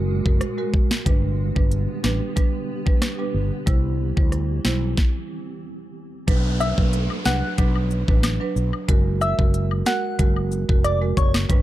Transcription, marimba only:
0.25 G#3 F#4 A#4
0.58 G#3 F#4 A#4
1.06 G3 D4 B4
1.56 G3 D4 B4
2.04 G3 D4 B4
2.36 G3 D4 B4
2.86 G3 D4 B4
3.19 G3 D4 B4
3.67 G3 E4 C5
4.17 G3 E4 C5
4.65 G3 E4 C5
6.27 F#3 D4 B4
6.77 F#3 D4 B4
7.25 F#3 D4 B4
7.58 F#3 D4 B4
8.08 F#3 D4 B4
8.40 F#3 D4 B4
8.88 G#3 F#4 A#4
9.38 G#3 F#4 A#4
9.86 G#3 F#4 A#4
10.19 G#3 F#4 A#4
10.69 G#3 F#4 A#4
11.01 G#3 F#4 A#4
11.49 G3 D4 B4

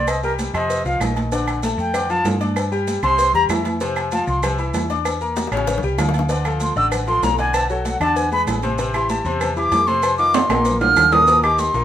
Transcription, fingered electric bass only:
Already playing: C2
0.54 F2
0.85 C2
1.00 A#1
1.78 F2
2.25 G2
3.03 C2
3.33 E2
3.49 F2
4.27 C2
4.74 E2
5.51 A1
5.83 C2
5.98 D2
6.76 A1
7.22 B1
8.00 E2
8.47 A1
9.25 E2
9.71 F2
10.49 A#1
10.96 D#2
11.74 A#1

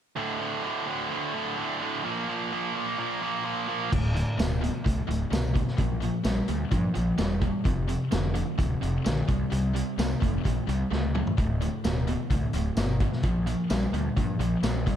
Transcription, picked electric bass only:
3.93 D1
4.39 D1
4.86 C2
5.09 D1
5.32 C2
5.78 A#1
6.25 A#1
6.49 D2
6.72 G2
6.96 A#1
7.19 E1
7.65 F1
8.12 F1
8.59 D1
8.82 F1
9.06 A#1
9.28 C2
9.52 C2
9.98 C2
10.22 F1
10.45 A#1
10.68 C2
10.91 C#2
11.38 D1
11.85 D1
12.30 C2
12.54 D1
12.77 G1
13.23 A#1
13.71 A#1
13.93 D2
14.17 G2
14.39 A#1
14.63 A#1

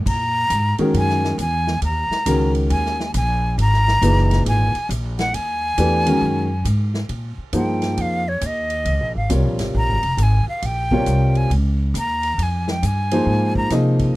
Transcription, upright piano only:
0.79 D#3 G#3 C#4 F#4 A#4
2.26 D#3 G#3 C#4 F#4 A#4
4.02 A#2 E3 D#4 G#4 B4
5.78 E3 A3 D4 G4 B4
6.06 D#3 G#3 C#4 F#4 A#4
7.53 F3 A#3 D#4 G#4 C5
9.30 C3 G3 F4 A#4 C#5
10.92 C3 G3 F4 A#4 C#5
13.12 F3 A#3 D#4 G#4 C5
13.71 F3 A#3 D#4 G#4 D#5

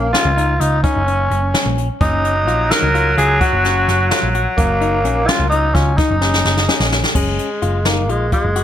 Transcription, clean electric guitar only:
0.14 C#4
0.37 D#4
0.61 F4
0.84 D#4
1.07 C#4
1.54 C#4
2.01 C#4
2.48 F4
2.70 D#4
2.95 F4
3.17 F4
3.40 F#4
3.64 C#4
4.11 F4
4.35 F#4
4.81 D#4
5.05 C#4
5.28 C#4
5.52 D#4
5.75 F4
5.99 D#4
6.21 C#4
6.69 C#4
7.15 C#4
7.62 F4
7.86 D#4
8.09 F4
8.33 F4
8.56 F#4

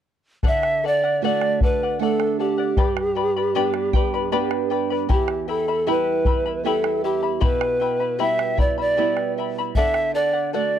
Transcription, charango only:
0.44 A4 D5 F#5
0.84 A4 D5 F#5
1.04 D5 F#5
1.24 A4 D5 F#5
1.63 A4 D5 F#5
1.83 D5 F#5
2.01 A4 D5 F#5
2.39 A4 D5 F#5
2.58 D5 F#5
2.78 G4 B4 D5 G5 B5
3.15 B4 D5 G5 B5
3.36 B4 D5 B5
3.55 G4 B4 D5 G5 B5
3.95 B4 D5 G5 B5
4.14 B4 D5 B5
4.32 G4 B4 D5 G5 B5
4.70 B4 D5 G5 B5
4.90 B4 D5 B5
5.09 E4 G4 E5 G5 B5
5.48 E4 E5 G5 B5
5.68 E4 E5 B5
5.87 E4 G4 E5 G5 B5
6.26 E4 E5 G5 B5
6.46 E4 E5 B5
6.65 E4 G4 E5 G5 B5
7.04 E4 E5 G5 B5
7.23 E4 E5 B5
7.40 E4 G4 E5 G5 B5
7.80 E4 E5 G5 B5
8.00 E4 E5 B5
8.19 E4 G4 E5 G5 B5
8.57 E4 E5 G5 B5
8.78 E4 E5 B5
8.97 E4 G4 E5 G5 B5
9.38 E4 E5 G5 B5
9.58 E4 E5 B5
9.77 A4 D5 F#5
10.15 A4 D5 F#5
10.33 D5 F#5
10.53 A4 D5 F#5

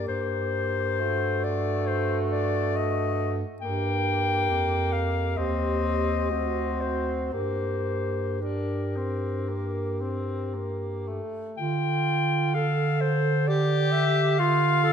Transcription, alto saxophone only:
Already playing: G4
1.00 F#4
3.62 G4
5.38 G4
6.31 F#4
7.33 G4
8.41 G4
11.59 F4
12.55 A4
13.48 G4
14.39 F4

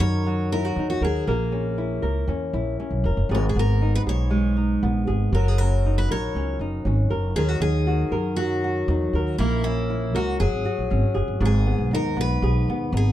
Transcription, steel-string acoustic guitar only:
0.00 C#5
0.52 A#4
0.90 F#4
1.04 G#4
3.35 A#4
3.49 G#4
3.59 A#4
3.95 B4
4.09 C#5
5.35 A#4
5.48 G#4
5.58 A#4
5.98 B4
6.12 C#5
7.36 G#4
7.48 F#4
7.62 G#4
8.36 F#4
9.38 E4
9.64 E4
10.16 F#4
10.40 G#4
11.45 G#4
11.95 A#4
12.21 B4
12.97 G#4

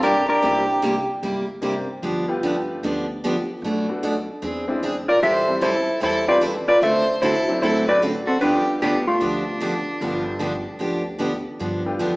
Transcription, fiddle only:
0.02 G4
0.28 G4
5.09 A#4
5.21 C5
5.62 A4
6.02 A4
6.28 B4
6.68 B4
6.82 C5
7.22 A4
7.62 A4
7.87 B4
8.26 F#4
8.41 G4
8.81 D4
9.08 D4

